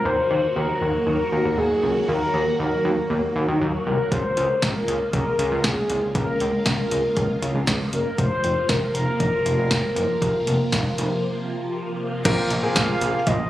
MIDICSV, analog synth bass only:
0, 0, Header, 1, 2, 480
1, 0, Start_track
1, 0, Key_signature, -5, "minor"
1, 0, Tempo, 508475
1, 47, Time_signature, 4, 2, 24, 8
1, 12743, End_track
2, 0, Start_track
2, 0, Title_t, "Analog synth bass"
2, 0, Program_c, 0, 38
2, 48, Note_on_c, 0, 39, 105
2, 157, Note_off_c, 0, 39, 0
2, 289, Note_on_c, 0, 39, 99
2, 397, Note_off_c, 0, 39, 0
2, 528, Note_on_c, 0, 39, 103
2, 636, Note_off_c, 0, 39, 0
2, 768, Note_on_c, 0, 39, 89
2, 876, Note_off_c, 0, 39, 0
2, 1008, Note_on_c, 0, 39, 91
2, 1116, Note_off_c, 0, 39, 0
2, 1247, Note_on_c, 0, 39, 96
2, 1356, Note_off_c, 0, 39, 0
2, 1368, Note_on_c, 0, 39, 91
2, 1476, Note_off_c, 0, 39, 0
2, 1488, Note_on_c, 0, 39, 99
2, 1596, Note_off_c, 0, 39, 0
2, 1727, Note_on_c, 0, 37, 96
2, 1836, Note_off_c, 0, 37, 0
2, 1967, Note_on_c, 0, 39, 111
2, 2076, Note_off_c, 0, 39, 0
2, 2207, Note_on_c, 0, 39, 100
2, 2316, Note_off_c, 0, 39, 0
2, 2447, Note_on_c, 0, 39, 105
2, 2556, Note_off_c, 0, 39, 0
2, 2688, Note_on_c, 0, 39, 99
2, 2796, Note_off_c, 0, 39, 0
2, 2927, Note_on_c, 0, 39, 98
2, 3036, Note_off_c, 0, 39, 0
2, 3167, Note_on_c, 0, 39, 93
2, 3276, Note_off_c, 0, 39, 0
2, 3287, Note_on_c, 0, 39, 92
2, 3396, Note_off_c, 0, 39, 0
2, 3407, Note_on_c, 0, 39, 100
2, 3516, Note_off_c, 0, 39, 0
2, 3645, Note_on_c, 0, 36, 90
2, 3755, Note_off_c, 0, 36, 0
2, 3886, Note_on_c, 0, 37, 105
2, 3995, Note_off_c, 0, 37, 0
2, 4126, Note_on_c, 0, 37, 100
2, 4235, Note_off_c, 0, 37, 0
2, 4368, Note_on_c, 0, 37, 104
2, 4476, Note_off_c, 0, 37, 0
2, 4606, Note_on_c, 0, 37, 99
2, 4715, Note_off_c, 0, 37, 0
2, 4846, Note_on_c, 0, 37, 104
2, 4955, Note_off_c, 0, 37, 0
2, 5085, Note_on_c, 0, 37, 101
2, 5195, Note_off_c, 0, 37, 0
2, 5206, Note_on_c, 0, 37, 98
2, 5315, Note_off_c, 0, 37, 0
2, 5327, Note_on_c, 0, 37, 103
2, 5436, Note_off_c, 0, 37, 0
2, 5568, Note_on_c, 0, 36, 96
2, 5676, Note_off_c, 0, 36, 0
2, 5805, Note_on_c, 0, 37, 105
2, 5915, Note_off_c, 0, 37, 0
2, 6048, Note_on_c, 0, 37, 101
2, 6156, Note_off_c, 0, 37, 0
2, 6287, Note_on_c, 0, 37, 101
2, 6396, Note_off_c, 0, 37, 0
2, 6526, Note_on_c, 0, 37, 93
2, 6635, Note_off_c, 0, 37, 0
2, 6766, Note_on_c, 0, 37, 96
2, 6875, Note_off_c, 0, 37, 0
2, 7005, Note_on_c, 0, 37, 97
2, 7115, Note_off_c, 0, 37, 0
2, 7125, Note_on_c, 0, 37, 95
2, 7235, Note_off_c, 0, 37, 0
2, 7246, Note_on_c, 0, 37, 106
2, 7355, Note_off_c, 0, 37, 0
2, 7485, Note_on_c, 0, 30, 86
2, 7595, Note_off_c, 0, 30, 0
2, 7726, Note_on_c, 0, 29, 107
2, 7835, Note_off_c, 0, 29, 0
2, 7967, Note_on_c, 0, 29, 91
2, 8076, Note_off_c, 0, 29, 0
2, 8207, Note_on_c, 0, 29, 109
2, 8316, Note_off_c, 0, 29, 0
2, 8444, Note_on_c, 0, 29, 97
2, 8555, Note_off_c, 0, 29, 0
2, 8686, Note_on_c, 0, 29, 107
2, 8795, Note_off_c, 0, 29, 0
2, 8925, Note_on_c, 0, 29, 100
2, 9035, Note_off_c, 0, 29, 0
2, 9044, Note_on_c, 0, 29, 95
2, 9155, Note_off_c, 0, 29, 0
2, 9167, Note_on_c, 0, 29, 101
2, 9276, Note_off_c, 0, 29, 0
2, 9404, Note_on_c, 0, 30, 93
2, 9514, Note_off_c, 0, 30, 0
2, 9646, Note_on_c, 0, 29, 111
2, 9755, Note_off_c, 0, 29, 0
2, 9886, Note_on_c, 0, 29, 96
2, 9995, Note_off_c, 0, 29, 0
2, 10127, Note_on_c, 0, 29, 102
2, 10236, Note_off_c, 0, 29, 0
2, 10367, Note_on_c, 0, 29, 96
2, 10476, Note_off_c, 0, 29, 0
2, 11566, Note_on_c, 0, 34, 111
2, 11675, Note_off_c, 0, 34, 0
2, 11806, Note_on_c, 0, 34, 106
2, 11916, Note_off_c, 0, 34, 0
2, 12047, Note_on_c, 0, 34, 109
2, 12156, Note_off_c, 0, 34, 0
2, 12286, Note_on_c, 0, 34, 93
2, 12395, Note_off_c, 0, 34, 0
2, 12526, Note_on_c, 0, 34, 98
2, 12635, Note_off_c, 0, 34, 0
2, 12743, End_track
0, 0, End_of_file